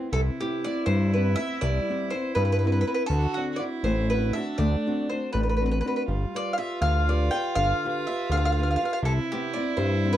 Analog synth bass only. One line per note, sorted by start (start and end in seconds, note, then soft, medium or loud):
0.13 0.30 C2 medium
0.87 1.36 G2 loud
1.62 1.80 C2 loud
2.36 2.84 G2 loud
3.10 3.27 D2 loud
3.83 4.32 A1 loud
4.59 4.76 D2 loud
5.34 5.82 A1 loud
6.08 6.25 G1 medium
6.81 7.30 D2 loud
7.56 7.73 G1 loud
8.30 8.77 D2 medium
9.03 9.20 C2 medium
9.77 10.17 G2 medium